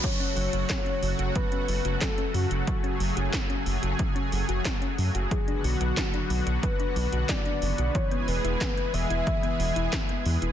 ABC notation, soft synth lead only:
X:1
M:4/4
L:1/8
Q:1/4=91
K:F#m
V:1 name="Soft synth lead"
c4 B2 A F- | F z6 z | G F3 B2 d2 | c B2 e4 z |]